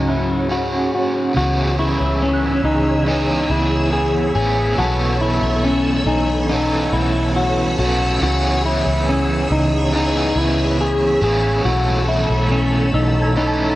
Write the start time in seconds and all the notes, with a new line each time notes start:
Already playing: C#2 G#2 C#3 F#3 C#4 F#4 G#4 C#5 F#5
0.09 E4
0.49 C#4 F#4 G#4 B5
0.53 C#5
0.94 F#4
1.33 C#2 C#3 E3 F#4 G#4 C#5 B5 E6
1.38 B3 C#4 G#4
1.79 E4 C#6
2.00 C#2
2.05 E6
2.22 C#4
2.33 F#6
2.64 C#2 D#4
3.06 E3 B3 C#4 D#4
3.11 G#4
3.50 C#2 E4
3.93 G#4
4.35 A1 C#4 G#4
4.39 B3
4.76 B1 B2 E3 B3 F#4 A4 A5 E6
4.82 C#4 A4
5.06 C#6
5.21 E4
5.34 E6
5.42 B1
5.64 C#4
6.06 B1 D#4 G#5
6.49 E3 B3 C#4 D#4 F#5
6.54 A4
6.93 B1 E4
7.36 F#4
7.78 B1 C#4 F#4 A4
7.82 B3
8.20 C#2 C#3 E3 B3 F#4 G#4
8.25 C#4 G#4
8.66 E4
8.86 C#2
9.09 C#4
9.50 C#2 D#4
9.92 E3 B3 C#4 D#4
9.97 G#4
10.36 C#2 E4
10.81 G#4
11.21 A1 C#4 G#4
11.26 B3
11.63 B1 B2 E3 F#4 A4 E6
11.68 A3 C#4 A4
12.08 E4
12.30 B1
12.51 C#4
12.94 B1 D#4 E6
13.22 G#6
13.36 E3 A3 C#4 D#4 A4 B5
13.47 A5
13.65 E6